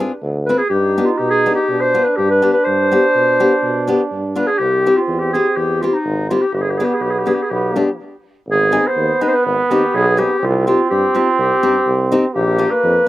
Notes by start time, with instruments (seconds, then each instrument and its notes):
Already playing: trombone D4, clarinet B4
0.00 nylon-string guitar C4 F4 G#4
0.22 tuba D2
0.46 nylon-string guitar C4 F4 B4, clarinet B4
0.58 clarinet G#4
0.70 tuba G2, trombone D#4, clarinet G4
0.98 nylon-string guitar B3 D4 G4
1.05 clarinet F4
1.18 tuba B2, clarinet G4
1.30 clarinet G#4
1.46 nylon-string guitar B3 D4 G4
1.55 clarinet G4
1.69 tuba B2, trombone D4
1.81 clarinet C5
1.94 nylon-string guitar B3 D4 F4
2.04 clarinet B4
2.17 tuba G2, clarinet G4
2.30 clarinet B4
2.42 nylon-string guitar B3 D4 G4
2.53 clarinet B4
2.64 tuba G2, clarinet C5
2.91 nylon-string guitar B3 D4 G4
3.15 tuba B2
3.40 nylon-string guitar B3 D4 G4
3.63 tuba B2
3.87 nylon-string guitar B3 D4 G4
4.12 tuba G2
4.35 nylon-string guitar B3 D4 F4, clarinet B4
4.47 clarinet G#4
4.59 tuba C2, trombone C4, clarinet G4
4.86 nylon-string guitar C4 E4 G4
4.97 clarinet F4
5.07 tuba E2
5.19 clarinet G4
5.33 nylon-string guitar C4 E4 G4, clarinet G#4
5.56 tuba E2, clarinet G4
5.81 nylon-string guitar C4 E4 G4, clarinet F4
5.94 clarinet D#4
6.05 tuba G#1
6.30 nylon-string guitar C4 E4 G4, clarinet F4
6.42 clarinet G4
6.53 tuba G1, trombone B3, clarinet G4
6.62 clarinet G#4
6.71 clarinet G4
6.78 nylon-string guitar B3 D4 G4, clarinet G#4
6.85 clarinet G4
6.94 clarinet G#4
7.01 tuba B1, clarinet G4
7.11 clarinet G#4
7.19 clarinet G4
7.26 nylon-string guitar B3 D4 G4, clarinet G#4
7.35 clarinet G4
7.43 clarinet G#4
7.51 tuba B1, trombone B3, clarinet G4
7.76 nylon-string guitar B3 D4 G4
8.48 tuba G#1, trombone B3, clarinet G#4
8.72 nylon-string guitar C4 D#4 G#4
8.87 clarinet C5
8.96 tuba D#2
9.21 nylon-string guitar C4 D#4 G#4, clarinet B4
9.28 clarinet C5
9.34 clarinet B4
9.45 tuba G#1, clarinet B4
9.69 tuba D#2, nylon-string guitar C4 D#4 G4, clarinet G4
9.94 tuba B1, clarinet G#4
10.17 nylon-string guitar C4 D#4 G#4, clarinet G4
10.40 tuba C2, trombone C4
10.45 clarinet F4
10.67 nylon-string guitar C4 D#4 G4, clarinet F4
10.91 tuba G2, clarinet G4
11.15 nylon-string guitar C4 D#4 G4, clarinet F4
11.39 tuba C2, clarinet G4
11.63 tuba G2, nylon-string guitar C4 D#4 G4
11.86 tuba C2
12.12 nylon-string guitar C4 D#4 G4
12.35 tuba A#1, trombone A#3, clarinet G4
12.58 nylon-string guitar A#3 D4 F4
12.71 clarinet B4
12.83 tuba F2